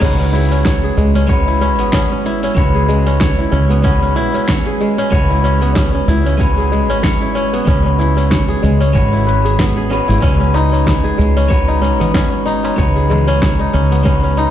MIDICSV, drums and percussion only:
0, 0, Header, 1, 3, 480
1, 0, Start_track
1, 0, Key_signature, 4, "minor"
1, 0, Tempo, 638298
1, 11, Time_signature, 4, 2, 24, 8
1, 10909, End_track
2, 0, Start_track
2, 0, Title_t, "Darbuka"
2, 7689, Note_on_c, 9, 62, 46
2, 7764, Note_off_c, 9, 62, 0
2, 7927, Note_on_c, 9, 63, 76
2, 7931, Note_on_c, 9, 62, 65
2, 8003, Note_off_c, 9, 63, 0
2, 8006, Note_off_c, 9, 62, 0
2, 8071, Note_on_c, 9, 63, 37
2, 8146, Note_off_c, 9, 63, 0
2, 8550, Note_on_c, 9, 63, 36
2, 8625, Note_off_c, 9, 63, 0
2, 8785, Note_on_c, 9, 62, 70
2, 8860, Note_off_c, 9, 62, 0
2, 9034, Note_on_c, 9, 64, 98
2, 9110, Note_off_c, 9, 64, 0
2, 9511, Note_on_c, 9, 63, 79
2, 9586, Note_off_c, 9, 63, 0
2, 9618, Note_on_c, 9, 62, 52
2, 9693, Note_off_c, 9, 62, 0
2, 9855, Note_on_c, 9, 62, 63
2, 9859, Note_on_c, 9, 64, 79
2, 9861, Note_on_c, 9, 63, 81
2, 9930, Note_off_c, 9, 62, 0
2, 9935, Note_off_c, 9, 64, 0
2, 9936, Note_off_c, 9, 63, 0
2, 9997, Note_on_c, 9, 63, 33
2, 10072, Note_off_c, 9, 63, 0
2, 10909, End_track
3, 0, Start_track
3, 0, Title_t, "Drums"
3, 11, Note_on_c, 9, 36, 101
3, 12, Note_on_c, 9, 46, 47
3, 12, Note_on_c, 9, 49, 98
3, 18, Note_on_c, 9, 82, 43
3, 87, Note_off_c, 9, 36, 0
3, 87, Note_off_c, 9, 46, 0
3, 87, Note_off_c, 9, 49, 0
3, 94, Note_off_c, 9, 82, 0
3, 155, Note_on_c, 9, 82, 23
3, 230, Note_off_c, 9, 82, 0
3, 260, Note_on_c, 9, 82, 78
3, 336, Note_off_c, 9, 82, 0
3, 390, Note_on_c, 9, 46, 52
3, 397, Note_on_c, 9, 82, 32
3, 466, Note_off_c, 9, 46, 0
3, 472, Note_off_c, 9, 82, 0
3, 492, Note_on_c, 9, 36, 114
3, 492, Note_on_c, 9, 38, 104
3, 492, Note_on_c, 9, 46, 50
3, 498, Note_on_c, 9, 82, 45
3, 567, Note_off_c, 9, 36, 0
3, 567, Note_off_c, 9, 38, 0
3, 567, Note_off_c, 9, 46, 0
3, 573, Note_off_c, 9, 82, 0
3, 635, Note_on_c, 9, 82, 22
3, 710, Note_off_c, 9, 82, 0
3, 738, Note_on_c, 9, 82, 77
3, 813, Note_off_c, 9, 82, 0
3, 869, Note_on_c, 9, 46, 58
3, 875, Note_on_c, 9, 82, 33
3, 944, Note_off_c, 9, 46, 0
3, 950, Note_off_c, 9, 82, 0
3, 971, Note_on_c, 9, 36, 105
3, 971, Note_on_c, 9, 46, 48
3, 977, Note_on_c, 9, 82, 46
3, 1046, Note_off_c, 9, 36, 0
3, 1046, Note_off_c, 9, 46, 0
3, 1052, Note_off_c, 9, 82, 0
3, 1113, Note_on_c, 9, 82, 22
3, 1188, Note_off_c, 9, 82, 0
3, 1215, Note_on_c, 9, 82, 86
3, 1291, Note_off_c, 9, 82, 0
3, 1345, Note_on_c, 9, 46, 55
3, 1351, Note_on_c, 9, 82, 31
3, 1420, Note_off_c, 9, 46, 0
3, 1426, Note_off_c, 9, 82, 0
3, 1450, Note_on_c, 9, 38, 107
3, 1450, Note_on_c, 9, 46, 48
3, 1451, Note_on_c, 9, 36, 104
3, 1457, Note_on_c, 9, 82, 43
3, 1526, Note_off_c, 9, 36, 0
3, 1526, Note_off_c, 9, 38, 0
3, 1526, Note_off_c, 9, 46, 0
3, 1532, Note_off_c, 9, 82, 0
3, 1593, Note_on_c, 9, 82, 21
3, 1668, Note_off_c, 9, 82, 0
3, 1696, Note_on_c, 9, 82, 84
3, 1771, Note_off_c, 9, 82, 0
3, 1828, Note_on_c, 9, 46, 58
3, 1834, Note_on_c, 9, 82, 33
3, 1903, Note_off_c, 9, 46, 0
3, 1909, Note_off_c, 9, 82, 0
3, 1930, Note_on_c, 9, 36, 106
3, 1931, Note_on_c, 9, 46, 45
3, 1937, Note_on_c, 9, 82, 46
3, 2006, Note_off_c, 9, 36, 0
3, 2006, Note_off_c, 9, 46, 0
3, 2013, Note_off_c, 9, 82, 0
3, 2073, Note_on_c, 9, 82, 25
3, 2148, Note_off_c, 9, 82, 0
3, 2177, Note_on_c, 9, 82, 82
3, 2252, Note_off_c, 9, 82, 0
3, 2305, Note_on_c, 9, 46, 53
3, 2311, Note_on_c, 9, 82, 33
3, 2380, Note_off_c, 9, 46, 0
3, 2387, Note_off_c, 9, 82, 0
3, 2411, Note_on_c, 9, 36, 115
3, 2411, Note_on_c, 9, 38, 110
3, 2411, Note_on_c, 9, 46, 47
3, 2417, Note_on_c, 9, 82, 50
3, 2486, Note_off_c, 9, 36, 0
3, 2486, Note_off_c, 9, 38, 0
3, 2486, Note_off_c, 9, 46, 0
3, 2492, Note_off_c, 9, 82, 0
3, 2554, Note_on_c, 9, 82, 24
3, 2629, Note_off_c, 9, 82, 0
3, 2656, Note_on_c, 9, 82, 80
3, 2732, Note_off_c, 9, 82, 0
3, 2787, Note_on_c, 9, 46, 54
3, 2793, Note_on_c, 9, 82, 35
3, 2862, Note_off_c, 9, 46, 0
3, 2868, Note_off_c, 9, 82, 0
3, 2892, Note_on_c, 9, 36, 113
3, 2892, Note_on_c, 9, 46, 49
3, 2898, Note_on_c, 9, 82, 49
3, 2967, Note_off_c, 9, 36, 0
3, 2967, Note_off_c, 9, 46, 0
3, 2973, Note_off_c, 9, 82, 0
3, 3033, Note_on_c, 9, 82, 24
3, 3109, Note_off_c, 9, 82, 0
3, 3137, Note_on_c, 9, 82, 86
3, 3212, Note_off_c, 9, 82, 0
3, 3266, Note_on_c, 9, 46, 54
3, 3272, Note_on_c, 9, 82, 36
3, 3341, Note_off_c, 9, 46, 0
3, 3347, Note_off_c, 9, 82, 0
3, 3371, Note_on_c, 9, 38, 107
3, 3371, Note_on_c, 9, 46, 45
3, 3372, Note_on_c, 9, 36, 97
3, 3377, Note_on_c, 9, 82, 45
3, 3446, Note_off_c, 9, 38, 0
3, 3446, Note_off_c, 9, 46, 0
3, 3447, Note_off_c, 9, 36, 0
3, 3453, Note_off_c, 9, 82, 0
3, 3512, Note_on_c, 9, 82, 20
3, 3587, Note_off_c, 9, 82, 0
3, 3617, Note_on_c, 9, 82, 81
3, 3692, Note_off_c, 9, 82, 0
3, 3747, Note_on_c, 9, 46, 57
3, 3753, Note_on_c, 9, 82, 34
3, 3822, Note_off_c, 9, 46, 0
3, 3829, Note_off_c, 9, 82, 0
3, 3851, Note_on_c, 9, 46, 43
3, 3852, Note_on_c, 9, 36, 116
3, 3857, Note_on_c, 9, 82, 46
3, 3926, Note_off_c, 9, 46, 0
3, 3928, Note_off_c, 9, 36, 0
3, 3933, Note_off_c, 9, 82, 0
3, 3993, Note_on_c, 9, 82, 25
3, 4069, Note_off_c, 9, 82, 0
3, 4099, Note_on_c, 9, 82, 76
3, 4175, Note_off_c, 9, 82, 0
3, 4226, Note_on_c, 9, 46, 52
3, 4232, Note_on_c, 9, 82, 34
3, 4301, Note_off_c, 9, 46, 0
3, 4307, Note_off_c, 9, 82, 0
3, 4332, Note_on_c, 9, 36, 119
3, 4332, Note_on_c, 9, 38, 106
3, 4332, Note_on_c, 9, 46, 45
3, 4338, Note_on_c, 9, 82, 46
3, 4407, Note_off_c, 9, 36, 0
3, 4407, Note_off_c, 9, 38, 0
3, 4407, Note_off_c, 9, 46, 0
3, 4413, Note_off_c, 9, 82, 0
3, 4474, Note_on_c, 9, 82, 25
3, 4550, Note_off_c, 9, 82, 0
3, 4580, Note_on_c, 9, 82, 82
3, 4655, Note_off_c, 9, 82, 0
3, 4711, Note_on_c, 9, 46, 54
3, 4717, Note_on_c, 9, 82, 36
3, 4786, Note_off_c, 9, 46, 0
3, 4792, Note_off_c, 9, 82, 0
3, 4811, Note_on_c, 9, 36, 109
3, 4814, Note_on_c, 9, 46, 48
3, 4820, Note_on_c, 9, 82, 49
3, 4886, Note_off_c, 9, 36, 0
3, 4889, Note_off_c, 9, 46, 0
3, 4896, Note_off_c, 9, 82, 0
3, 4957, Note_on_c, 9, 82, 26
3, 5033, Note_off_c, 9, 82, 0
3, 5059, Note_on_c, 9, 82, 84
3, 5134, Note_off_c, 9, 82, 0
3, 5193, Note_on_c, 9, 46, 52
3, 5199, Note_on_c, 9, 82, 35
3, 5268, Note_off_c, 9, 46, 0
3, 5275, Note_off_c, 9, 82, 0
3, 5291, Note_on_c, 9, 36, 105
3, 5296, Note_on_c, 9, 38, 96
3, 5296, Note_on_c, 9, 46, 43
3, 5302, Note_on_c, 9, 82, 50
3, 5366, Note_off_c, 9, 36, 0
3, 5371, Note_off_c, 9, 38, 0
3, 5371, Note_off_c, 9, 46, 0
3, 5377, Note_off_c, 9, 82, 0
3, 5439, Note_on_c, 9, 82, 22
3, 5514, Note_off_c, 9, 82, 0
3, 5541, Note_on_c, 9, 82, 86
3, 5616, Note_off_c, 9, 82, 0
3, 5669, Note_on_c, 9, 46, 54
3, 5675, Note_on_c, 9, 82, 38
3, 5744, Note_off_c, 9, 46, 0
3, 5750, Note_off_c, 9, 82, 0
3, 5770, Note_on_c, 9, 36, 114
3, 5772, Note_on_c, 9, 46, 41
3, 5778, Note_on_c, 9, 82, 48
3, 5845, Note_off_c, 9, 36, 0
3, 5847, Note_off_c, 9, 46, 0
3, 5853, Note_off_c, 9, 82, 0
3, 5916, Note_on_c, 9, 82, 25
3, 5991, Note_off_c, 9, 82, 0
3, 6022, Note_on_c, 9, 82, 81
3, 6097, Note_off_c, 9, 82, 0
3, 6150, Note_on_c, 9, 46, 53
3, 6157, Note_on_c, 9, 82, 31
3, 6226, Note_off_c, 9, 46, 0
3, 6232, Note_off_c, 9, 82, 0
3, 6251, Note_on_c, 9, 36, 113
3, 6255, Note_on_c, 9, 38, 105
3, 6255, Note_on_c, 9, 46, 45
3, 6261, Note_on_c, 9, 82, 48
3, 6326, Note_off_c, 9, 36, 0
3, 6330, Note_off_c, 9, 38, 0
3, 6330, Note_off_c, 9, 46, 0
3, 6336, Note_off_c, 9, 82, 0
3, 6396, Note_on_c, 9, 82, 24
3, 6471, Note_off_c, 9, 82, 0
3, 6499, Note_on_c, 9, 82, 79
3, 6574, Note_off_c, 9, 82, 0
3, 6630, Note_on_c, 9, 46, 53
3, 6636, Note_on_c, 9, 82, 35
3, 6705, Note_off_c, 9, 46, 0
3, 6712, Note_off_c, 9, 82, 0
3, 6731, Note_on_c, 9, 36, 105
3, 6735, Note_on_c, 9, 46, 44
3, 6741, Note_on_c, 9, 82, 48
3, 6806, Note_off_c, 9, 36, 0
3, 6810, Note_off_c, 9, 46, 0
3, 6816, Note_off_c, 9, 82, 0
3, 6877, Note_on_c, 9, 82, 23
3, 6952, Note_off_c, 9, 82, 0
3, 6980, Note_on_c, 9, 82, 90
3, 7055, Note_off_c, 9, 82, 0
3, 7112, Note_on_c, 9, 46, 49
3, 7118, Note_on_c, 9, 82, 33
3, 7187, Note_off_c, 9, 46, 0
3, 7193, Note_off_c, 9, 82, 0
3, 7211, Note_on_c, 9, 36, 103
3, 7216, Note_on_c, 9, 38, 96
3, 7216, Note_on_c, 9, 46, 44
3, 7222, Note_on_c, 9, 82, 46
3, 7286, Note_off_c, 9, 36, 0
3, 7291, Note_off_c, 9, 38, 0
3, 7291, Note_off_c, 9, 46, 0
3, 7298, Note_off_c, 9, 82, 0
3, 7358, Note_on_c, 9, 82, 21
3, 7434, Note_off_c, 9, 82, 0
3, 7463, Note_on_c, 9, 82, 83
3, 7538, Note_off_c, 9, 82, 0
3, 7595, Note_on_c, 9, 46, 55
3, 7602, Note_on_c, 9, 82, 37
3, 7671, Note_off_c, 9, 46, 0
3, 7677, Note_off_c, 9, 82, 0
3, 7692, Note_on_c, 9, 36, 104
3, 7700, Note_on_c, 9, 46, 43
3, 7706, Note_on_c, 9, 82, 43
3, 7767, Note_off_c, 9, 36, 0
3, 7775, Note_off_c, 9, 46, 0
3, 7781, Note_off_c, 9, 82, 0
3, 7844, Note_on_c, 9, 82, 24
3, 7919, Note_off_c, 9, 82, 0
3, 7946, Note_on_c, 9, 82, 75
3, 8021, Note_off_c, 9, 82, 0
3, 8076, Note_on_c, 9, 46, 49
3, 8082, Note_on_c, 9, 82, 34
3, 8151, Note_off_c, 9, 46, 0
3, 8158, Note_off_c, 9, 82, 0
3, 8173, Note_on_c, 9, 36, 107
3, 8179, Note_on_c, 9, 38, 97
3, 8179, Note_on_c, 9, 46, 42
3, 8185, Note_on_c, 9, 82, 47
3, 8248, Note_off_c, 9, 36, 0
3, 8254, Note_off_c, 9, 38, 0
3, 8254, Note_off_c, 9, 46, 0
3, 8260, Note_off_c, 9, 82, 0
3, 8321, Note_on_c, 9, 82, 25
3, 8396, Note_off_c, 9, 82, 0
3, 8426, Note_on_c, 9, 82, 80
3, 8501, Note_off_c, 9, 82, 0
3, 8553, Note_on_c, 9, 46, 53
3, 8559, Note_on_c, 9, 82, 34
3, 8628, Note_off_c, 9, 46, 0
3, 8635, Note_off_c, 9, 82, 0
3, 8653, Note_on_c, 9, 36, 102
3, 8658, Note_on_c, 9, 46, 46
3, 8665, Note_on_c, 9, 82, 46
3, 8728, Note_off_c, 9, 36, 0
3, 8734, Note_off_c, 9, 46, 0
3, 8740, Note_off_c, 9, 82, 0
3, 8801, Note_on_c, 9, 82, 25
3, 8877, Note_off_c, 9, 82, 0
3, 8903, Note_on_c, 9, 82, 83
3, 8978, Note_off_c, 9, 82, 0
3, 9032, Note_on_c, 9, 46, 52
3, 9039, Note_on_c, 9, 82, 31
3, 9108, Note_off_c, 9, 46, 0
3, 9114, Note_off_c, 9, 82, 0
3, 9133, Note_on_c, 9, 36, 101
3, 9138, Note_on_c, 9, 38, 92
3, 9138, Note_on_c, 9, 46, 44
3, 9144, Note_on_c, 9, 82, 45
3, 9208, Note_off_c, 9, 36, 0
3, 9213, Note_off_c, 9, 38, 0
3, 9213, Note_off_c, 9, 46, 0
3, 9219, Note_off_c, 9, 82, 0
3, 9279, Note_on_c, 9, 82, 20
3, 9354, Note_off_c, 9, 82, 0
3, 9380, Note_on_c, 9, 82, 79
3, 9455, Note_off_c, 9, 82, 0
3, 9511, Note_on_c, 9, 46, 54
3, 9517, Note_on_c, 9, 82, 33
3, 9586, Note_off_c, 9, 46, 0
3, 9592, Note_off_c, 9, 82, 0
3, 9613, Note_on_c, 9, 36, 107
3, 9616, Note_on_c, 9, 46, 43
3, 9622, Note_on_c, 9, 82, 43
3, 9688, Note_off_c, 9, 36, 0
3, 9691, Note_off_c, 9, 46, 0
3, 9697, Note_off_c, 9, 82, 0
3, 9757, Note_on_c, 9, 82, 22
3, 9832, Note_off_c, 9, 82, 0
3, 9859, Note_on_c, 9, 82, 69
3, 9934, Note_off_c, 9, 82, 0
3, 9988, Note_on_c, 9, 46, 54
3, 9994, Note_on_c, 9, 82, 32
3, 10063, Note_off_c, 9, 46, 0
3, 10069, Note_off_c, 9, 82, 0
3, 10092, Note_on_c, 9, 36, 118
3, 10096, Note_on_c, 9, 38, 105
3, 10096, Note_on_c, 9, 46, 45
3, 10102, Note_on_c, 9, 82, 46
3, 10167, Note_off_c, 9, 36, 0
3, 10171, Note_off_c, 9, 38, 0
3, 10171, Note_off_c, 9, 46, 0
3, 10177, Note_off_c, 9, 82, 0
3, 10237, Note_on_c, 9, 82, 22
3, 10312, Note_off_c, 9, 82, 0
3, 10340, Note_on_c, 9, 82, 72
3, 10415, Note_off_c, 9, 82, 0
3, 10469, Note_on_c, 9, 46, 54
3, 10475, Note_on_c, 9, 82, 34
3, 10544, Note_off_c, 9, 46, 0
3, 10550, Note_off_c, 9, 82, 0
3, 10571, Note_on_c, 9, 36, 97
3, 10575, Note_on_c, 9, 46, 48
3, 10581, Note_on_c, 9, 82, 43
3, 10646, Note_off_c, 9, 36, 0
3, 10650, Note_off_c, 9, 46, 0
3, 10656, Note_off_c, 9, 82, 0
3, 10715, Note_on_c, 9, 82, 23
3, 10790, Note_off_c, 9, 82, 0
3, 10818, Note_on_c, 9, 82, 84
3, 10893, Note_off_c, 9, 82, 0
3, 10909, End_track
0, 0, End_of_file